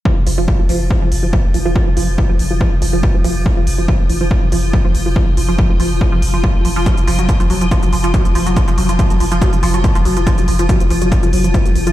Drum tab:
HH |--o---o---o---o-|--o---o---o---o-|--o---o---o---o-|--o---o---o---o-|
BD |o---o---o---o---|o---o---o---o---|o---o---o---o---|o---o---o---o---|

HH |xxoxxxoxxxoxxxox|xxoxxxoxxxoxxxox|xxoxxxoxxxoxxxox|
BD |o---o---o---o---|o---o---o---o---|o---o---o---o---|